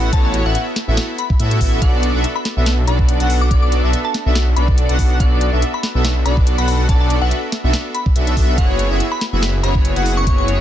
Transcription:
Already playing: detuned saw bass A1, supersaw synth B3 E4 F#4 A4 F#5, digital synth lead F#5
0.13 detuned saw bass A1, supersaw synth B3 E4 F#4 A4 C#5, digital synth lead C#5, synth pluck A5, kick, closed hi-hat
0.25 synth pluck A5
0.34 closed hi-hat
0.45 detuned saw bass A1, supersaw synth B3 E4 F#4 A4 E5, digital synth lead E5, synth pluck F#5
0.55 synth pluck F#5, closed hi-hat
0.76 snare, closed hi-hat
0.88 detuned saw bass A1, supersaw synth B3 E4 F#4 A4 E5, digital synth lead E5
0.97 snare, closed hi-hat
1.18 synth pluck B5, closed hi-hat
1.30 kick
1.39 detuned saw bass A2, supersaw synth B3 E4 F#4 A4 E5, digital synth lead E5, closed hi-hat
1.51 closed hi-hat
1.61 detuned saw bass A1, supersaw synth B3 E4 F#4 A4 E5, digital synth lead E5, kick, open hi-hat
1.82 detuned saw bass B1, supersaw synth B3 D4 F#4 A4 D5, digital synth lead D5, synth pluck F#5, kick, closed hi-hat
2.03 closed hi-hat
2.14 detuned saw bass B1, supersaw synth B3 D4 F#4 A4 E5, digital synth lead E5
2.24 closed hi-hat
2.36 synth pluck B5
2.45 snare, closed hi-hat
2.57 detuned saw bass B1, supersaw synth B3 D4 F#4 A4 E5, digital synth lead E5
2.66 snare, closed hi-hat
2.87 detuned saw bass B1, supersaw synth B3 D4 F#4 A4 D5, digital synth lead D5, synth pluck B5, closed hi-hat
2.99 kick
3.09 closed hi-hat
3.20 detuned saw bass B1, supersaw synth B3 D4 F#4 A4 F#5, digital synth lead F#5, closed hi-hat
3.30 open hi-hat
3.41 synth pluck D6
3.51 detuned saw bass B1, supersaw synth B3 D4 F#4 A4 D5, digital synth lead D5, synth pluck D6, kick, closed hi-hat
3.62 synth pluck D6
3.72 closed hi-hat
3.84 detuned saw bass B1, supersaw synth B3 D4 F#4 A4 E5, digital synth lead E5
3.93 closed hi-hat
4.05 synth pluck A5
4.14 snare, closed hi-hat
4.26 detuned saw bass B1, supersaw synth B3 D4 F#4 A4 E5, digital synth lead E5
4.35 snare, closed hi-hat
4.56 detuned saw bass B1, supersaw synth B3 D4 F#4 A4 D5, digital synth lead D5, synth pluck B5, closed hi-hat
4.68 kick
4.78 closed hi-hat
4.89 detuned saw bass B1, supersaw synth B3 D4 F#4 A4 F#5, digital synth lead F#5, closed hi-hat
4.99 kick, open hi-hat
5.20 detuned saw bass B1, supersaw synth B3 D4 F#4 A4 D5, digital synth lead D5, synth pluck F#5, kick, closed hi-hat
5.41 closed hi-hat
5.53 detuned saw bass B1, supersaw synth B3 D4 F#4 A4 E5, digital synth lead E5
5.62 closed hi-hat
5.74 synth pluck B5
5.83 snare, closed hi-hat
5.95 detuned saw bass B1, supersaw synth B3 D4 F#4 A4 E5, digital synth lead E5
6.05 snare, closed hi-hat
6.26 detuned saw bass B1, supersaw synth B3 D4 F#4 A4 D5, digital synth lead D5, synth pluck B5, closed hi-hat
6.37 kick
6.47 closed hi-hat
6.58 detuned saw bass B1, supersaw synth B3 D4 F#4 A4 F#5, digital synth lead F#5, synth pluck B5, closed hi-hat
6.68 synth pluck B5, open hi-hat
6.89 detuned saw bass B1, supersaw synth B3 D4 F#4 A4 D5, digital synth lead D5, synth pluck A5, kick, closed hi-hat
7.00 synth pluck A5
7.10 closed hi-hat
7.22 detuned saw bass B1, supersaw synth B3 D4 F#4 A4 E5, digital synth lead E5, synth pluck F#5
7.31 synth pluck F#5, closed hi-hat
7.52 snare, closed hi-hat
7.64 detuned saw bass B1, supersaw synth B3 D4 F#4 A4 E5, digital synth lead E5
7.73 snare, closed hi-hat
7.94 synth pluck B5, closed hi-hat
8.06 kick
8.16 detuned saw bass B1, supersaw synth B3 D4 F#4 A4 E5, digital synth lead E5, closed hi-hat
8.27 closed hi-hat
8.37 detuned saw bass B1, supersaw synth B3 D4 F#4 A4 E5, digital synth lead E5, kick, open hi-hat
8.58 detuned saw bass F#1, supersaw synth B3 E4 F#4 G#4 C#5, digital synth lead C#5, synth pluck F#5, kick, closed hi-hat
8.79 closed hi-hat
8.91 detuned saw bass F#1, supersaw synth B3 E4 F#4 G#4 E5, digital synth lead E5
9.00 closed hi-hat
9.12 synth pluck B5
9.21 snare, closed hi-hat
9.33 detuned saw bass F#1, supersaw synth B3 E4 F#4 G#4 E5, digital synth lead E5
9.43 snare, closed hi-hat
9.63 detuned saw bass F#1, supersaw synth B3 E4 F#4 G#4 C#5, digital synth lead C#5, synth pluck B5, closed hi-hat
9.75 kick
9.85 closed hi-hat
9.96 detuned saw bass F#1, supersaw synth B3 E4 F#4 G#4 F#5, digital synth lead F#5, closed hi-hat
10.06 open hi-hat
10.17 synth pluck C#6
10.27 detuned saw bass F#1, supersaw synth B3 E4 F#4 G#4 C#5, digital synth lead C#5, synth pluck C#6, kick, closed hi-hat
10.38 synth pluck C#6
10.48 closed hi-hat

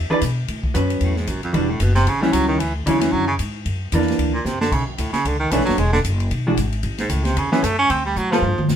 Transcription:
Already playing: hollow-body jazz guitar E5
0.10 hollow-body jazz guitar E3 D4 G#4 B4 D5, muted upright bass stroke
0.21 upright bass B2, kick, hi-hat pedal, ride
0.48 upright bass A2, kick, ride
0.63 kick
0.74 upright bass F#2, hollow-body jazz guitar F#3 B3 C#4, kick, hi-hat pedal, ride
0.90 ride
1.01 upright bass E2, baritone saxophone A2, kick, ride
1.16 baritone saxophone G#2, snare
1.27 upright bass A1, baritone saxophone F#2, kick, hi-hat pedal, ride
1.42 baritone saxophone F2, muted upright bass stroke, ride
1.53 upright bass E1, baritone saxophone G2, hollow-body jazz guitar E3 G3 D4 F#4, kick, ride
1.69 baritone saxophone A2
1.80 upright bass F#1, baritone saxophone B2, kick, hi-hat pedal, ride
1.95 baritone saxophone C3, snare, ride
2.06 upright bass A1, baritone saxophone C#3, kick, ride
2.22 baritone saxophone E3, hollow-body jazz guitar G3 C#4 E4, snare
2.33 upright bass C#2, baritone saxophone F#3, kick, hi-hat pedal, ride
2.48 baritone saxophone D#3
2.59 upright bass D2, baritone saxophone E3, kick, ride
2.75 baritone saxophone A2
2.86 upright bass E2, baritone saxophone C#3, hollow-body jazz guitar D3 F#3 C#4 E4, kick, hi-hat pedal, ride
3.01 baritone saxophone E3, snare, ride
3.12 upright bass F#2, baritone saxophone F#3, kick
3.28 baritone saxophone C#3
3.39 upright bass G#2, kick, hi-hat pedal, ride
3.65 upright bass F#2, kick, ride
3.92 upright bass E2, hollow-body jazz guitar E3 A#3 D4, kick, hi-hat pedal, ride
4.01 snare
4.08 snare, ride
4.19 upright bass D2, kick, ride
4.34 baritone saxophone A#2
4.45 upright bass F#2, baritone saxophone C3, snare, hi-hat pedal
4.61 baritone saxophone D3, snare
4.72 upright bass B1, baritone saxophone C#3, kick, crash
4.87 baritone saxophone F#2
4.98 upright bass D2, baritone saxophone A2, kick, hi-hat pedal, ride
5.12 baritone saxophone C#3, muted upright bass stroke, snare, ride
5.25 upright bass C#2, baritone saxophone D3, kick, ride
5.40 baritone saxophone D#3
5.51 upright bass B1, baritone saxophone E3, hollow-body jazz guitar B3 D4 A4 C#5, kick, hi-hat pedal, ride
5.59 upright bass A1, snare
5.65 upright bass F#1, baritone saxophone F#3, snare, ride
5.77 upright bass E1, baritone saxophone G#3, kick, ride
5.93 baritone saxophone D3, snare
6.04 upright bass F#1, kick, hi-hat pedal, ride
6.20 ride
6.31 upright bass B1, kick, ride
6.47 hollow-body jazz guitar E3 G#3 D4 F#4
6.57 upright bass G#1, kick, hi-hat pedal, ride
6.72 ride
6.83 upright bass A1, kick, ride
6.98 baritone saxophone G#2, snare, ride
7.09 upright bass C#2, baritone saxophone A2, kick, hi-hat pedal, ride
7.24 baritone saxophone C3, snare, ride
7.36 upright bass E2, baritone saxophone C#3, kick, ride
7.52 baritone saxophone E3, hollow-body jazz guitar F#3 B3 C#4, snare
7.63 upright bass F#2, baritone saxophone A3, kick, hi-hat pedal, ride
7.79 baritone saxophone C#4
7.90 upright bass D2, baritone saxophone C4, kick, ride
8.06 baritone saxophone G3
8.16 upright bass A2, baritone saxophone F#3, hi-hat pedal
8.32 baritone saxophone F3, hollow-body jazz guitar G3 B3 F4 A4, snare
8.42 upright bass G2, floor tom
8.58 muted upright bass stroke, mid tom
8.68 upright bass A2, snare, hi-hat pedal

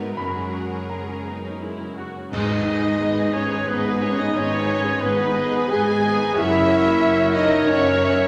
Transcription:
Already playing: double bass section G#1, grand piano G#2 G#3 A#3 F#4 E5 F#5 G#5, cello section G#2, viola section B3 D#4, french horn section F#4, violin section A#4 B4
0.00 grand piano B3
0.17 double bass section F#1, grand piano F#2 B5, cello section F#2, french horn section G#3, viola section C#4 F#4, violin section G#4 A#4
0.35 grand piano G#3
0.54 grand piano F#4
0.72 grand piano C#4
0.89 grand piano G#3 A#5, viola section C#4
1.09 grand piano C#4
1.25 grand piano B3, viola section D#4
1.45 grand piano C#4
1.60 grand piano G#3, viola section E4
1.81 grand piano C#4
1.97 viola section F#4, grand piano F#4
2.16 grand piano C#4
2.31 double bass section G#1, timpani G#2, cello section G#2, grand piano G#2, viola section D#4 G#4, french horn section D#4, violin section G#4 D#5, clarinet B4, flute D#5, oboe D#5, concert bass drum, crash
2.49 viola section D#4 G#4, violin section B4 G#5
2.56 grand piano D#3
2.65 viola section D#4 G#4, violin section G#4 D#5
2.80 grand piano G#3, viola section D#4 G#4, violin section B4 G#5
2.99 double bass section G#1, cello section G#2, grand piano B3, viola section D#4 G#4, violin section G#4 D#5
3.16 viola section D#4 G#4, violin section B4 G#5
3.24 grand piano D#4
3.33 french horn section C#4, viola section D#4 G#4, violin section G#4 C#5 D#5, flute C#5
3.46 grand piano G#4
3.51 viola section D#4 G#4, violin section B4 G#5
3.68 double bass section G#1, cello section G#2, french horn section B3, viola section D#4 G#4, violin section G#4 B4 D#5, flute B4, grand piano B4
3.86 viola section D#4 G#4, violin section B4 G#5
3.91 grand piano G#4
4.02 french horn section C#4, viola section D#4 G#4, violin section G#4 C#5 D#5, flute C#5
4.13 grand piano B3
4.19 viola section D#4 G#4, french horn section D#4, violin section B4 D#5 G#5, flute D#5
4.34 double bass section G#1, cello section G#2, grand piano G#2, french horn section C#4, viola section D#4 G#4, violin section G#4 C#5 D#5, flute C#5
4.50 viola section D#4 G#4, violin section B4 G#5
4.56 grand piano D#3
4.68 viola section D#4 G#4, violin section G#4 D#5
4.78 grand piano G#3
4.84 viola section D#4 G#4, violin section B4 G#5
4.99 double bass section G#1, cello section G#2, french horn section B3, grand piano B3, viola section D#4 G#4, violin section G#4 B4 D#5, flute B4
5.16 viola section D#4 G#4, violin section B4 G#5
5.23 grand piano D#4
5.34 viola section D#4 G#4, violin section G#4 D#5
5.46 grand piano G#4
5.51 viola section D#4 G#4, violin section B4 G#5
5.68 double bass section G#1, cello section G#2, viola section D#4 G#4, french horn section G#4, violin section G#4 D#5 G#5, grand piano B4, flute G#5
5.85 viola section D#4 G#4, violin section B4 G#5
5.92 grand piano G#4
6.02 viola section D#4 G#4, violin section G#4 D#5
6.14 grand piano B3
6.18 viola section D#4 G#4, violin section B4 G#5
6.33 double bass section F#1, grand piano F#2, cello section F#2, viola section F#4 C#5, clarinet A#4, oboe C#5, flute E5, violin section E5 F#5
6.38 french horn section E4
6.50 viola section A#4 E5
6.54 grand piano C#3, violin section C#5 E5
6.65 viola section F#4 C#5, violin section E5
6.70 violin section F#5
6.79 grand piano A#3, viola section A#4 E5
6.87 violin section C#5 E5
6.97 double bass section F#1, cello section F#2, grand piano C#4, viola section F#4 C#5
7.04 violin section E5 F#5
7.15 viola section A#4 E5
7.19 grand piano F#4, violin section C#5 E5
7.31 french horn section D#4, viola section F#4 C#5, flute D#5, violin section D#5 E5 F#5
7.43 grand piano A#4, viola section A#4 E5
7.51 violin section C#5 E5
7.62 double bass section F#1, cello section F#2, viola section F#4 C#5, grand piano C#5, flute C#5
7.67 french horn section C#4, violin section C#5 E5 F#5
7.79 viola section A#4 E5
7.86 grand piano A#4, violin section C#5 E5
7.95 viola section F#4 C#5
8.01 violin section E5 F#5
8.09 grand piano C#4, viola section A#4 E5
8.18 violin section C#5 E5

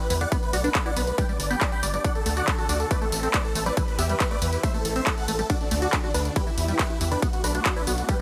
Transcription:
Already playing: analog synth pad E3 E4 G4 B4
0.10 analog synth bass E2, acid bass E3, supersaw synth B4, open hi-hat, tambourine
0.21 acid bass D3, supersaw synth D5 F#5, closed hi-hat, tambourine
0.32 analog synth pad A3 B3 D4, acid bass B3, supersaw synth B4, kick, closed hi-hat, ride, tambourine
0.43 supersaw synth B4, tambourine
0.53 analog synth bass B1, acid bass F#4, supersaw synth D5 F#5, open hi-hat, tambourine
0.64 acid bass D4, supersaw synth B4, closed hi-hat, tambourine
0.75 supersaw synth B4, kick, clap, closed hi-hat, ride, tambourine
0.86 acid bass E4, supersaw synth D5 F#5, tambourine
0.96 analog synth bass B1, acid bass B3, supersaw synth B4, open hi-hat, tambourine
1.07 supersaw synth B4, closed hi-hat, tambourine
1.18 analog synth pad G3 B3, acid bass G3, supersaw synth B4 G5, kick, closed hi-hat, ride, tambourine
1.29 acid bass G3, supersaw synth D5, tambourine
1.40 analog synth bass G1, supersaw synth D5, open hi-hat, tambourine
1.50 acid bass B3, supersaw synth G5 B5, closed hi-hat, tambourine
1.61 acid bass G4, supersaw synth D5, kick, clap, closed hi-hat, ride, tambourine
1.72 supersaw synth G5 B5, tambourine
1.83 analog synth bass G1, acid bass G3, supersaw synth D5, open hi-hat, tambourine
1.94 acid bass F#3, supersaw synth D5, closed hi-hat, tambourine
2.04 analog synth pad D3 F#4 A4, acid bass D4, supersaw synth D5 F#5, kick, closed hi-hat, ride, tambourine
2.15 supersaw synth A4, tambourine
2.26 analog synth bass D2, acid bass A3, supersaw synth A4, open hi-hat, tambourine
2.37 acid bass F#4, supersaw synth D5 F#5, closed hi-hat, tambourine
2.48 supersaw synth A4, kick, clap, closed hi-hat, ride, tambourine
2.58 acid bass F#4, supersaw synth A4, tambourine
2.69 analog synth bass D2, acid bass D4, supersaw synth F#4 D5, open hi-hat, tambourine
2.80 supersaw synth A4, closed hi-hat, tambourine
2.91 acid bass A3, analog synth pad A3 C4 E4, supersaw synth B4 D5, kick, closed hi-hat, ride, tambourine
3.01 acid bass A3, supersaw synth A4, tambourine
3.12 analog synth bass A1, supersaw synth A4, open hi-hat, tambourine
3.23 acid bass C4, supersaw synth A4, closed hi-hat, tambourine
3.34 acid bass A3, supersaw synth B4 D5, kick, clap, closed hi-hat, ride, tambourine
3.45 supersaw synth A4, tambourine
3.55 analog synth bass A1, acid bass A3, supersaw synth A4, open hi-hat, tambourine
3.66 acid bass G3, supersaw synth B4 D5, closed hi-hat, tambourine
3.77 analog synth pad E3 G4 B4, acid bass E3, supersaw synth B4, kick, closed hi-hat, ride, tambourine
3.88 supersaw synth B4, tambourine
3.99 analog synth bass E2, acid bass B3, supersaw synth G4 E5, open hi-hat, tambourine
4.09 acid bass G3, supersaw synth B4, closed hi-hat, tambourine
4.20 supersaw synth B4, kick, clap, closed hi-hat, ride, tambourine
4.31 acid bass A3, supersaw synth B4 D5, tambourine
4.42 analog synth bass E2, acid bass E3, supersaw synth B4, open hi-hat, tambourine
4.52 supersaw synth B4, closed hi-hat, tambourine
4.63 acid bass A3, analog synth pad A3 C4, supersaw synth C5 E5, kick, closed hi-hat, ride, tambourine
4.74 acid bass A3, supersaw synth A4, tambourine
4.85 analog synth bass A1, supersaw synth A4, open hi-hat, tambourine
4.96 acid bass C4, supersaw synth C5 E5, closed hi-hat, tambourine
5.07 acid bass A3, supersaw synth A4, kick, clap, closed hi-hat, ride, tambourine
5.17 supersaw synth A4 F#5, tambourine
5.28 analog synth bass A1, acid bass A3, supersaw synth A4, open hi-hat, tambourine
5.39 acid bass G3, supersaw synth A4, closed hi-hat, tambourine
5.50 analog synth pad D3 D4 F#4 A4, acid bass D4, supersaw synth F#4 D5, kick, closed hi-hat, ride, tambourine
5.61 supersaw synth D4, tambourine
5.71 analog synth bass D2, acid bass A3, supersaw synth D4, open hi-hat, tambourine
5.82 supersaw synth F#4 D5, acid bass F#4, closed hi-hat, tambourine
5.93 supersaw synth D4, kick, clap, closed hi-hat, ride, tambourine
6.04 supersaw synth D4, acid bass F#4, tambourine
6.14 analog synth bass D2, supersaw synth D4 B4, acid bass D4, open hi-hat, tambourine
6.25 supersaw synth D4, closed hi-hat, tambourine
6.36 acid bass E3, analog synth pad E3 E4 G4 B4, supersaw synth G4 B4, kick, closed hi-hat, ride, tambourine
6.47 acid bass E3, supersaw synth E4, tambourine
6.58 analog synth bass E2, supersaw synth E4, open hi-hat, tambourine
6.68 acid bass G3, supersaw synth E4, closed hi-hat, tambourine
6.79 acid bass E4, supersaw synth G4 B4, kick, clap, closed hi-hat, ride, tambourine
6.90 supersaw synth E4, tambourine
7.01 analog synth bass E2, acid bass E3, supersaw synth E4, open hi-hat, tambourine
7.11 acid bass D3, supersaw synth D4 B4, closed hi-hat, tambourine
7.22 analog synth pad A3 B3 D4, acid bass B3, supersaw synth F#4, kick, closed hi-hat, ride, tambourine
7.33 supersaw synth F#4, closed hi-hat, tambourine
7.44 analog synth bass B1, supersaw synth D4 B4, acid bass F#4, open hi-hat, tambourine
7.55 acid bass D4, supersaw synth F#4, closed hi-hat, tambourine
7.65 supersaw synth F#4, kick, clap, closed hi-hat, ride, tambourine
7.76 supersaw synth D4 B4, acid bass E4, tambourine
7.87 analog synth bass B1, acid bass B3, supersaw synth F#4, open hi-hat, tambourine
7.98 supersaw synth F#4, closed hi-hat, tambourine
8.09 acid bass G3, analog synth pad G3, supersaw synth G4 B4, kick, closed hi-hat, ride, tambourine

